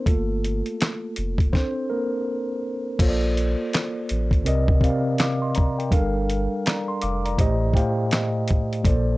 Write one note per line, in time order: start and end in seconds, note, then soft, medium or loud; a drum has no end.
0.06 0.62 G1 medium
0.06 1.50 A3 medium
0.06 1.50 A#3 soft
0.06 1.50 F4 medium
0.06 1.52 A4 medium
0.06 kick loud
0.06 closed hi-hat medium
0.44 closed hi-hat medium
0.66 closed hi-hat soft
0.81 snare loud
0.81 clap medium
0.81 closed hi-hat medium
1.16 1.51 F1 medium
1.16 closed hi-hat medium
1.38 kick medium
1.38 closed hi-hat soft
1.53 1.88 C4 medium
1.53 2.60 D4 medium
1.53 2.59 A4 soft
1.53 1.91 C5 loud
1.53 kick loud
1.53 snare medium
1.90 2.60 A#3 medium
1.90 2.59 A#4 medium
2.99 3.55 A#1 loud
2.99 4.11 A#3 medium
2.99 4.11 F4 medium
2.99 4.12 A4 medium
2.99 4.12 C5 medium
2.99 3.09 C#5 medium
2.99 kick loud
2.99 closed hi-hat medium
2.99 crash medium
3.08 4.16 D5 medium
3.37 closed hi-hat medium
3.73 snare loud
3.73 clap medium
3.73 closed hi-hat medium
4.09 4.44 A1 medium
4.09 closed hi-hat medium
4.31 kick medium
4.31 closed hi-hat soft
4.44 4.80 C2 loud
4.44 4.76 C3 medium
4.44 4.77 C4 medium
4.44 4.77 A#4 medium
4.44 4.78 D5 medium
4.44 4.78 D#5 loud
4.44 closed hi-hat medium
4.68 kick medium
4.81 5.68 C3 medium
4.81 5.68 C4 medium
4.81 5.19 A#4 medium
4.81 5.19 D5 medium
4.81 5.19 F5 medium
4.81 kick medium
4.81 closed hi-hat medium
5.18 5.42 F5 medium
5.18 5.41 D6 medium
5.18 snare loud
5.18 clap medium
5.18 closed hi-hat medium
5.42 5.55 D#5 medium
5.42 5.55 C6 medium
5.55 5.78 D5 medium
5.55 5.78 A#5 medium
5.55 kick medium
5.55 closed hi-hat medium
5.78 5.91 A#4 medium
5.78 6.13 G5 medium
5.78 closed hi-hat soft
5.90 6.48 G1 loud
5.90 7.03 G3 medium
5.90 7.03 D4 medium
5.90 7.04 A4 medium
5.90 7.04 A#4 medium
5.90 6.66 F5 medium
5.90 kick loud
5.90 closed hi-hat medium
6.30 closed hi-hat medium
6.66 6.88 D5 medium
6.66 6.88 A#5 medium
6.66 snare loud
6.66 clap medium
6.66 closed hi-hat medium
6.88 7.01 C6 medium
7.01 7.37 F1 medium
7.01 7.24 F5 medium
7.01 7.24 D6 medium
7.01 closed hi-hat medium
7.25 7.60 D5 medium
7.25 7.60 A#5 medium
7.25 closed hi-hat soft
7.37 7.73 A1 loud
7.37 7.69 A2 loud
7.37 7.69 A3 medium
7.37 7.70 G4 medium
7.37 7.70 C5 medium
7.37 7.71 D#5 loud
7.37 kick medium
7.37 closed hi-hat medium
7.73 8.60 A2 medium
7.73 8.61 A3 medium
7.73 8.61 G4 medium
7.73 8.62 C5 medium
7.73 8.62 F5 medium
7.73 8.09 G5 medium
7.73 kick medium
7.73 closed hi-hat medium
8.11 8.81 D#5 medium
8.11 snare loud
8.11 clap medium
8.11 closed hi-hat medium
8.48 kick medium
8.48 closed hi-hat medium
8.73 closed hi-hat soft
8.83 9.18 A#1 loud
8.83 9.18 A#2 medium
8.83 9.18 A#3 medium
8.83 9.18 A4 medium
8.83 9.18 C5 medium
8.83 9.18 D5 medium
8.83 kick loud
8.83 closed hi-hat medium